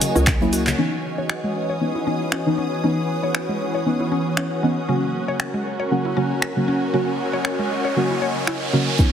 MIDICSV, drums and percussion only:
0, 0, Header, 1, 2, 480
1, 0, Start_track
1, 0, Tempo, 512821
1, 734, Time_signature, 4, 2, 24, 8
1, 8536, End_track
2, 0, Start_track
2, 0, Title_t, "Drums"
2, 14, Note_on_c, 9, 46, 106
2, 14, Note_on_c, 9, 63, 68
2, 16, Note_on_c, 9, 54, 72
2, 17, Note_on_c, 9, 69, 84
2, 108, Note_off_c, 9, 46, 0
2, 108, Note_off_c, 9, 63, 0
2, 110, Note_off_c, 9, 54, 0
2, 110, Note_off_c, 9, 69, 0
2, 149, Note_on_c, 9, 69, 48
2, 242, Note_off_c, 9, 69, 0
2, 251, Note_on_c, 9, 38, 113
2, 252, Note_on_c, 9, 26, 119
2, 254, Note_on_c, 9, 36, 114
2, 254, Note_on_c, 9, 39, 107
2, 254, Note_on_c, 9, 54, 80
2, 257, Note_on_c, 9, 69, 35
2, 345, Note_off_c, 9, 38, 0
2, 346, Note_off_c, 9, 26, 0
2, 347, Note_off_c, 9, 36, 0
2, 348, Note_off_c, 9, 39, 0
2, 348, Note_off_c, 9, 54, 0
2, 351, Note_off_c, 9, 69, 0
2, 380, Note_on_c, 9, 63, 91
2, 389, Note_on_c, 9, 42, 47
2, 474, Note_off_c, 9, 63, 0
2, 483, Note_off_c, 9, 42, 0
2, 494, Note_on_c, 9, 46, 89
2, 495, Note_on_c, 9, 54, 65
2, 497, Note_on_c, 9, 69, 84
2, 588, Note_off_c, 9, 46, 0
2, 588, Note_off_c, 9, 54, 0
2, 591, Note_off_c, 9, 69, 0
2, 623, Note_on_c, 9, 42, 41
2, 626, Note_on_c, 9, 39, 77
2, 629, Note_on_c, 9, 69, 47
2, 717, Note_off_c, 9, 42, 0
2, 720, Note_off_c, 9, 39, 0
2, 723, Note_off_c, 9, 69, 0
2, 1212, Note_on_c, 9, 26, 118
2, 1306, Note_off_c, 9, 26, 0
2, 2172, Note_on_c, 9, 26, 113
2, 2266, Note_off_c, 9, 26, 0
2, 3132, Note_on_c, 9, 26, 115
2, 3226, Note_off_c, 9, 26, 0
2, 4092, Note_on_c, 9, 26, 113
2, 4186, Note_off_c, 9, 26, 0
2, 5052, Note_on_c, 9, 26, 115
2, 5145, Note_off_c, 9, 26, 0
2, 6012, Note_on_c, 9, 26, 110
2, 6105, Note_off_c, 9, 26, 0
2, 6972, Note_on_c, 9, 26, 112
2, 7065, Note_off_c, 9, 26, 0
2, 7932, Note_on_c, 9, 26, 109
2, 8025, Note_off_c, 9, 26, 0
2, 8406, Note_on_c, 9, 54, 79
2, 8413, Note_on_c, 9, 36, 112
2, 8416, Note_on_c, 9, 69, 34
2, 8500, Note_off_c, 9, 54, 0
2, 8507, Note_off_c, 9, 36, 0
2, 8510, Note_off_c, 9, 69, 0
2, 8536, End_track
0, 0, End_of_file